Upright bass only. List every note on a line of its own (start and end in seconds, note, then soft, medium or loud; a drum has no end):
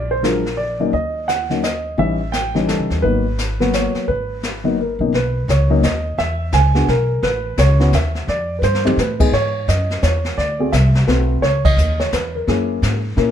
0.00 0.89 A#1 medium
0.93 1.94 D#2 medium
1.98 2.75 A1 medium
2.79 2.90 C#2 medium
2.90 3.01 D#2 medium
3.03 3.91 G#1 medium
3.94 muted upright bass stroke soft
4.08 4.96 G#1 medium
4.99 5.11 A#1 medium
5.13 5.47 B1 medium
5.48 5.82 C#2 medium
5.83 6.17 D#2 medium
6.18 6.52 E2 medium
6.53 6.87 C#2 medium
6.88 7.22 B1 medium
7.23 7.57 A1 medium
7.58 7.92 C#2 medium
7.93 8.27 D#2 medium
8.28 8.61 F2 medium
8.62 8.96 G2 medium
8.97 9.31 A2 medium
9.33 9.67 G#2 medium
9.68 10.02 F#2 medium
10.02 10.36 E2 medium
10.38 10.71 D2 medium
10.73 11.07 C2 medium
11.07 11.41 B1 medium
11.42 11.76 C#2 medium
11.77 12.11 D#2 medium
12.13 12.46 E2 medium
12.47 12.81 F#2 medium
12.82 13.16 G#2 medium
13.17 13.31 A#2 medium